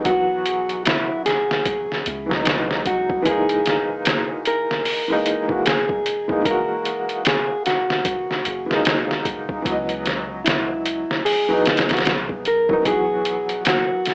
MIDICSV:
0, 0, Header, 1, 5, 480
1, 0, Start_track
1, 0, Tempo, 800000
1, 34, Time_signature, 4, 2, 24, 8
1, 8484, End_track
2, 0, Start_track
2, 0, Title_t, "Clean electric guitar"
2, 0, Program_c, 0, 27
2, 33, Note_on_c, 0, 66, 92
2, 517, Note_off_c, 0, 66, 0
2, 519, Note_on_c, 0, 64, 78
2, 752, Note_off_c, 0, 64, 0
2, 755, Note_on_c, 0, 68, 94
2, 1690, Note_off_c, 0, 68, 0
2, 1719, Note_on_c, 0, 66, 91
2, 1956, Note_off_c, 0, 66, 0
2, 1958, Note_on_c, 0, 68, 90
2, 2681, Note_off_c, 0, 68, 0
2, 2684, Note_on_c, 0, 70, 96
2, 3375, Note_off_c, 0, 70, 0
2, 3398, Note_on_c, 0, 68, 95
2, 3874, Note_off_c, 0, 68, 0
2, 3876, Note_on_c, 0, 70, 89
2, 4361, Note_off_c, 0, 70, 0
2, 4363, Note_on_c, 0, 68, 79
2, 4582, Note_off_c, 0, 68, 0
2, 4599, Note_on_c, 0, 66, 80
2, 5532, Note_off_c, 0, 66, 0
2, 6267, Note_on_c, 0, 64, 73
2, 6727, Note_off_c, 0, 64, 0
2, 6751, Note_on_c, 0, 68, 89
2, 7482, Note_off_c, 0, 68, 0
2, 7484, Note_on_c, 0, 70, 99
2, 7719, Note_off_c, 0, 70, 0
2, 7722, Note_on_c, 0, 68, 93
2, 8174, Note_off_c, 0, 68, 0
2, 8208, Note_on_c, 0, 66, 77
2, 8484, Note_off_c, 0, 66, 0
2, 8484, End_track
3, 0, Start_track
3, 0, Title_t, "Felt piano"
3, 0, Program_c, 1, 0
3, 8, Note_on_c, 1, 52, 77
3, 26, Note_on_c, 1, 54, 75
3, 47, Note_on_c, 1, 59, 74
3, 63, Note_on_c, 1, 66, 90
3, 1329, Note_off_c, 1, 52, 0
3, 1338, Note_off_c, 1, 54, 0
3, 1349, Note_off_c, 1, 59, 0
3, 1356, Note_on_c, 1, 52, 73
3, 1357, Note_off_c, 1, 66, 0
3, 1374, Note_on_c, 1, 54, 67
3, 1395, Note_on_c, 1, 59, 67
3, 1411, Note_on_c, 1, 63, 83
3, 1920, Note_off_c, 1, 52, 0
3, 1929, Note_off_c, 1, 54, 0
3, 1933, Note_on_c, 1, 52, 88
3, 1940, Note_off_c, 1, 59, 0
3, 1948, Note_off_c, 1, 63, 0
3, 1951, Note_on_c, 1, 56, 80
3, 1970, Note_on_c, 1, 58, 79
3, 1989, Note_on_c, 1, 63, 99
3, 3012, Note_off_c, 1, 52, 0
3, 3021, Note_off_c, 1, 56, 0
3, 3030, Note_off_c, 1, 58, 0
3, 3040, Note_off_c, 1, 63, 0
3, 3047, Note_on_c, 1, 52, 86
3, 3058, Note_on_c, 1, 56, 82
3, 3067, Note_on_c, 1, 58, 79
3, 3075, Note_on_c, 1, 63, 96
3, 3249, Note_off_c, 1, 52, 0
3, 3254, Note_off_c, 1, 56, 0
3, 3259, Note_off_c, 1, 58, 0
3, 3263, Note_off_c, 1, 63, 0
3, 3287, Note_on_c, 1, 52, 74
3, 3296, Note_on_c, 1, 56, 68
3, 3306, Note_on_c, 1, 58, 69
3, 3312, Note_on_c, 1, 66, 79
3, 3413, Note_off_c, 1, 52, 0
3, 3417, Note_off_c, 1, 56, 0
3, 3422, Note_off_c, 1, 58, 0
3, 3425, Note_off_c, 1, 66, 0
3, 3767, Note_on_c, 1, 52, 70
3, 3776, Note_on_c, 1, 56, 63
3, 3785, Note_on_c, 1, 58, 64
3, 3792, Note_on_c, 1, 63, 77
3, 3839, Note_off_c, 1, 52, 0
3, 3848, Note_on_c, 1, 52, 76
3, 3850, Note_off_c, 1, 56, 0
3, 3855, Note_off_c, 1, 58, 0
3, 3858, Note_off_c, 1, 63, 0
3, 3865, Note_on_c, 1, 56, 74
3, 3884, Note_on_c, 1, 58, 74
3, 3904, Note_on_c, 1, 66, 86
3, 5169, Note_off_c, 1, 52, 0
3, 5178, Note_off_c, 1, 56, 0
3, 5187, Note_off_c, 1, 58, 0
3, 5196, Note_on_c, 1, 52, 68
3, 5197, Note_off_c, 1, 66, 0
3, 5214, Note_on_c, 1, 56, 66
3, 5234, Note_on_c, 1, 58, 67
3, 5254, Note_on_c, 1, 63, 81
3, 5760, Note_off_c, 1, 52, 0
3, 5769, Note_off_c, 1, 56, 0
3, 5773, Note_on_c, 1, 52, 83
3, 5779, Note_off_c, 1, 58, 0
3, 5789, Note_off_c, 1, 63, 0
3, 5794, Note_on_c, 1, 54, 83
3, 5813, Note_on_c, 1, 59, 80
3, 5832, Note_on_c, 1, 75, 96
3, 6852, Note_off_c, 1, 52, 0
3, 6862, Note_off_c, 1, 54, 0
3, 6872, Note_off_c, 1, 59, 0
3, 6881, Note_off_c, 1, 75, 0
3, 6891, Note_on_c, 1, 52, 86
3, 6901, Note_on_c, 1, 54, 80
3, 6912, Note_on_c, 1, 59, 81
3, 6920, Note_on_c, 1, 63, 93
3, 7091, Note_off_c, 1, 52, 0
3, 7096, Note_off_c, 1, 54, 0
3, 7102, Note_off_c, 1, 59, 0
3, 7106, Note_off_c, 1, 63, 0
3, 7131, Note_on_c, 1, 52, 71
3, 7143, Note_on_c, 1, 54, 68
3, 7154, Note_on_c, 1, 59, 67
3, 7161, Note_on_c, 1, 66, 84
3, 7255, Note_off_c, 1, 52, 0
3, 7261, Note_off_c, 1, 54, 0
3, 7266, Note_off_c, 1, 59, 0
3, 7270, Note_off_c, 1, 66, 0
3, 7611, Note_on_c, 1, 52, 68
3, 7621, Note_on_c, 1, 54, 62
3, 7632, Note_on_c, 1, 59, 68
3, 7637, Note_on_c, 1, 63, 80
3, 7684, Note_off_c, 1, 52, 0
3, 7693, Note_off_c, 1, 54, 0
3, 7693, Note_on_c, 1, 52, 82
3, 7698, Note_off_c, 1, 59, 0
3, 7701, Note_off_c, 1, 63, 0
3, 7712, Note_on_c, 1, 54, 73
3, 7731, Note_on_c, 1, 59, 73
3, 7749, Note_on_c, 1, 66, 86
3, 8484, Note_off_c, 1, 52, 0
3, 8484, Note_off_c, 1, 54, 0
3, 8484, Note_off_c, 1, 59, 0
3, 8484, Note_off_c, 1, 66, 0
3, 8484, End_track
4, 0, Start_track
4, 0, Title_t, "808-style bass"
4, 0, Program_c, 2, 38
4, 0, Note_on_c, 2, 35, 90
4, 1217, Note_off_c, 2, 35, 0
4, 1239, Note_on_c, 2, 37, 73
4, 1938, Note_off_c, 2, 37, 0
4, 1955, Note_on_c, 2, 30, 100
4, 2790, Note_off_c, 2, 30, 0
4, 3296, Note_on_c, 2, 28, 92
4, 5055, Note_off_c, 2, 28, 0
4, 5078, Note_on_c, 2, 30, 77
4, 5777, Note_off_c, 2, 30, 0
4, 5793, Note_on_c, 2, 37, 100
4, 6629, Note_off_c, 2, 37, 0
4, 7141, Note_on_c, 2, 35, 89
4, 8484, Note_off_c, 2, 35, 0
4, 8484, End_track
5, 0, Start_track
5, 0, Title_t, "Drums"
5, 31, Note_on_c, 9, 42, 72
5, 32, Note_on_c, 9, 36, 98
5, 91, Note_off_c, 9, 42, 0
5, 92, Note_off_c, 9, 36, 0
5, 274, Note_on_c, 9, 42, 64
5, 334, Note_off_c, 9, 42, 0
5, 416, Note_on_c, 9, 42, 41
5, 476, Note_off_c, 9, 42, 0
5, 513, Note_on_c, 9, 42, 81
5, 523, Note_on_c, 9, 38, 107
5, 573, Note_off_c, 9, 42, 0
5, 583, Note_off_c, 9, 38, 0
5, 755, Note_on_c, 9, 42, 62
5, 765, Note_on_c, 9, 38, 38
5, 815, Note_off_c, 9, 42, 0
5, 825, Note_off_c, 9, 38, 0
5, 906, Note_on_c, 9, 38, 56
5, 966, Note_off_c, 9, 38, 0
5, 993, Note_on_c, 9, 36, 94
5, 993, Note_on_c, 9, 42, 80
5, 1053, Note_off_c, 9, 36, 0
5, 1053, Note_off_c, 9, 42, 0
5, 1151, Note_on_c, 9, 38, 36
5, 1211, Note_off_c, 9, 38, 0
5, 1235, Note_on_c, 9, 42, 63
5, 1295, Note_off_c, 9, 42, 0
5, 1387, Note_on_c, 9, 38, 50
5, 1447, Note_off_c, 9, 38, 0
5, 1472, Note_on_c, 9, 42, 80
5, 1482, Note_on_c, 9, 38, 106
5, 1532, Note_off_c, 9, 42, 0
5, 1542, Note_off_c, 9, 38, 0
5, 1623, Note_on_c, 9, 38, 45
5, 1683, Note_off_c, 9, 38, 0
5, 1713, Note_on_c, 9, 36, 88
5, 1713, Note_on_c, 9, 42, 63
5, 1773, Note_off_c, 9, 36, 0
5, 1773, Note_off_c, 9, 42, 0
5, 1856, Note_on_c, 9, 36, 90
5, 1916, Note_off_c, 9, 36, 0
5, 1952, Note_on_c, 9, 42, 76
5, 1953, Note_on_c, 9, 36, 96
5, 2012, Note_off_c, 9, 42, 0
5, 2013, Note_off_c, 9, 36, 0
5, 2095, Note_on_c, 9, 42, 41
5, 2155, Note_off_c, 9, 42, 0
5, 2193, Note_on_c, 9, 42, 64
5, 2204, Note_on_c, 9, 38, 51
5, 2253, Note_off_c, 9, 42, 0
5, 2264, Note_off_c, 9, 38, 0
5, 2432, Note_on_c, 9, 42, 88
5, 2442, Note_on_c, 9, 38, 104
5, 2492, Note_off_c, 9, 42, 0
5, 2502, Note_off_c, 9, 38, 0
5, 2672, Note_on_c, 9, 42, 66
5, 2732, Note_off_c, 9, 42, 0
5, 2825, Note_on_c, 9, 38, 45
5, 2885, Note_off_c, 9, 38, 0
5, 2912, Note_on_c, 9, 46, 73
5, 2972, Note_off_c, 9, 46, 0
5, 3154, Note_on_c, 9, 42, 64
5, 3214, Note_off_c, 9, 42, 0
5, 3295, Note_on_c, 9, 36, 80
5, 3355, Note_off_c, 9, 36, 0
5, 3394, Note_on_c, 9, 42, 78
5, 3404, Note_on_c, 9, 38, 99
5, 3454, Note_off_c, 9, 42, 0
5, 3464, Note_off_c, 9, 38, 0
5, 3534, Note_on_c, 9, 36, 90
5, 3594, Note_off_c, 9, 36, 0
5, 3635, Note_on_c, 9, 42, 61
5, 3695, Note_off_c, 9, 42, 0
5, 3774, Note_on_c, 9, 36, 93
5, 3834, Note_off_c, 9, 36, 0
5, 3871, Note_on_c, 9, 36, 103
5, 3873, Note_on_c, 9, 42, 80
5, 3931, Note_off_c, 9, 36, 0
5, 3933, Note_off_c, 9, 42, 0
5, 4112, Note_on_c, 9, 42, 59
5, 4172, Note_off_c, 9, 42, 0
5, 4255, Note_on_c, 9, 42, 41
5, 4315, Note_off_c, 9, 42, 0
5, 4350, Note_on_c, 9, 42, 85
5, 4360, Note_on_c, 9, 38, 104
5, 4410, Note_off_c, 9, 42, 0
5, 4420, Note_off_c, 9, 38, 0
5, 4594, Note_on_c, 9, 42, 64
5, 4604, Note_on_c, 9, 38, 39
5, 4654, Note_off_c, 9, 42, 0
5, 4664, Note_off_c, 9, 38, 0
5, 4741, Note_on_c, 9, 38, 55
5, 4801, Note_off_c, 9, 38, 0
5, 4830, Note_on_c, 9, 36, 101
5, 4830, Note_on_c, 9, 42, 78
5, 4890, Note_off_c, 9, 36, 0
5, 4890, Note_off_c, 9, 42, 0
5, 4985, Note_on_c, 9, 38, 37
5, 5045, Note_off_c, 9, 38, 0
5, 5071, Note_on_c, 9, 42, 64
5, 5131, Note_off_c, 9, 42, 0
5, 5225, Note_on_c, 9, 38, 51
5, 5285, Note_off_c, 9, 38, 0
5, 5311, Note_on_c, 9, 42, 82
5, 5321, Note_on_c, 9, 38, 105
5, 5371, Note_off_c, 9, 42, 0
5, 5381, Note_off_c, 9, 38, 0
5, 5466, Note_on_c, 9, 38, 46
5, 5526, Note_off_c, 9, 38, 0
5, 5551, Note_on_c, 9, 36, 83
5, 5553, Note_on_c, 9, 42, 64
5, 5611, Note_off_c, 9, 36, 0
5, 5613, Note_off_c, 9, 42, 0
5, 5693, Note_on_c, 9, 36, 92
5, 5753, Note_off_c, 9, 36, 0
5, 5792, Note_on_c, 9, 36, 100
5, 5795, Note_on_c, 9, 42, 79
5, 5852, Note_off_c, 9, 36, 0
5, 5855, Note_off_c, 9, 42, 0
5, 5934, Note_on_c, 9, 42, 43
5, 5994, Note_off_c, 9, 42, 0
5, 6034, Note_on_c, 9, 42, 60
5, 6044, Note_on_c, 9, 38, 50
5, 6094, Note_off_c, 9, 42, 0
5, 6104, Note_off_c, 9, 38, 0
5, 6275, Note_on_c, 9, 42, 86
5, 6285, Note_on_c, 9, 38, 106
5, 6335, Note_off_c, 9, 42, 0
5, 6345, Note_off_c, 9, 38, 0
5, 6514, Note_on_c, 9, 42, 65
5, 6574, Note_off_c, 9, 42, 0
5, 6666, Note_on_c, 9, 38, 48
5, 6726, Note_off_c, 9, 38, 0
5, 6756, Note_on_c, 9, 46, 75
5, 6816, Note_off_c, 9, 46, 0
5, 6994, Note_on_c, 9, 42, 65
5, 7004, Note_on_c, 9, 38, 81
5, 7054, Note_off_c, 9, 42, 0
5, 7063, Note_on_c, 9, 42, 62
5, 7064, Note_off_c, 9, 38, 0
5, 7073, Note_on_c, 9, 38, 87
5, 7123, Note_off_c, 9, 42, 0
5, 7133, Note_off_c, 9, 38, 0
5, 7135, Note_on_c, 9, 42, 58
5, 7145, Note_on_c, 9, 38, 74
5, 7181, Note_off_c, 9, 42, 0
5, 7181, Note_on_c, 9, 42, 58
5, 7191, Note_off_c, 9, 38, 0
5, 7191, Note_on_c, 9, 38, 80
5, 7232, Note_off_c, 9, 42, 0
5, 7232, Note_on_c, 9, 42, 81
5, 7242, Note_off_c, 9, 38, 0
5, 7242, Note_on_c, 9, 38, 113
5, 7292, Note_off_c, 9, 42, 0
5, 7302, Note_off_c, 9, 38, 0
5, 7375, Note_on_c, 9, 36, 86
5, 7435, Note_off_c, 9, 36, 0
5, 7472, Note_on_c, 9, 42, 62
5, 7532, Note_off_c, 9, 42, 0
5, 7615, Note_on_c, 9, 36, 88
5, 7675, Note_off_c, 9, 36, 0
5, 7712, Note_on_c, 9, 36, 93
5, 7712, Note_on_c, 9, 42, 82
5, 7772, Note_off_c, 9, 36, 0
5, 7772, Note_off_c, 9, 42, 0
5, 7951, Note_on_c, 9, 42, 63
5, 8011, Note_off_c, 9, 42, 0
5, 8094, Note_on_c, 9, 42, 40
5, 8154, Note_off_c, 9, 42, 0
5, 8190, Note_on_c, 9, 42, 87
5, 8200, Note_on_c, 9, 38, 105
5, 8250, Note_off_c, 9, 42, 0
5, 8260, Note_off_c, 9, 38, 0
5, 8433, Note_on_c, 9, 42, 66
5, 8443, Note_on_c, 9, 38, 35
5, 8484, Note_off_c, 9, 38, 0
5, 8484, Note_off_c, 9, 42, 0
5, 8484, End_track
0, 0, End_of_file